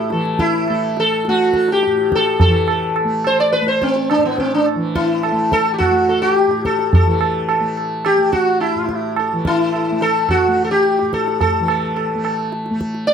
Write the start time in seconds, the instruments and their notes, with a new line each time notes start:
Already playing: tanpura A2 E3 A3
0.10 tanpura E3, sitar A4, tabla te
0.25 tabla te
0.39 sitar E4, tabla ke
0.54 tabla te
0.68 tanpura A3, sitar A4, tabla na
0.97 sitar A4, tabla te
1.25 tanpura A3, tabla te
1.29 sitar F#4
1.39 tabla te
1.53 sitar A4, tabla ke
1.68 sitar G4, tabla te
1.83 tanpura A2, tabla te
1.97 tabla te
2.12 sitar A4, tabla ke
2.26 tabla te
2.40 sitar A4, tabla tin, tabla ge
2.47 tanpura E3
2.68 sitar A4, tabla na
2.96 tabla na
3.04 tanpura A3
3.24 sitar C5, tabla na
3.40 sitar D5
3.52 sitar B4, tabla te
3.61 tanpura A3
3.67 sitar C5, tabla te
3.82 sitar C4, tabla ke
3.96 tabla te
4.10 sitar D4, tabla na
4.18 tanpura A2
4.25 sitar B3
4.38 sitar C4, tabla ke
4.54 sitar D4
4.66 tabla na
4.75 tanpura E3
4.95 sitar E4, tabla ke
5.23 sitar A4, tabla na
5.32 tanpura A3
5.52 sitar A4, tabla ke
5.66 tabla te
5.74 sitar G4
5.78 sitar F#4, tabla na, tabla ge
5.91 tanpura A3
6.09 sitar A4, tabla te
6.22 sitar F#4
6.33 sitar G4, tabla te
6.47 tanpura A2, tabla te
6.65 sitar A4, tabla ke
6.79 tabla te
6.93 sitar A4, tabla tin, tabla ge
7.05 tanpura E3
7.21 sitar A4, tabla na
7.49 sitar A4, tabla na
7.60 tanpura A3
7.77 tabla na
8.05 sitar G4, tabla na
8.18 tanpura A3
8.32 sitar F#4, tabla ke
8.60 sitar E4, tabla na
8.75 tanpura A2
8.89 tabla ke
9.16 sitar A4, tabla na
9.33 tanpura E3
9.45 sitar E4, tabla ke
9.73 sitar A4, tabla na
9.91 tanpura A3
10.01 sitar A4, tabla te
10.29 sitar F#4, tabla na, tabla ge
10.48 tanpura A3
10.57 tabla te
10.64 sitar A4
10.71 sitar G4
10.85 tabla te
10.99 tanpura A2, tabla te
11.13 sitar A4, tabla ke
11.27 tabla te
11.41 sitar A4, tabla tin, tabla ge
11.59 tanpura E3
11.68 sitar A4, tabla na
11.96 sitar A4, tabla na
12.15 tanpura A3
12.24 sitar A4, tabla na
12.52 tabla te
12.66 tabla te
12.70 tanpura A3
12.81 tabla ke
12.94 tabla te
13.07 sitar D5, tabla te